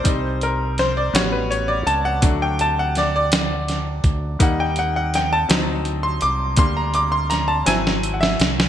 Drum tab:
HH |x-x-x-x-x-x-|x-x-x-x-x-x-|x-x-x-x-x-x-|x-x-x-x-x-x-|
SD |----o-o-----|----o-o-o---|----o-o-----|----o-oo-ooo|
BD |o-----------|o---------o-|o-----------|o-----------|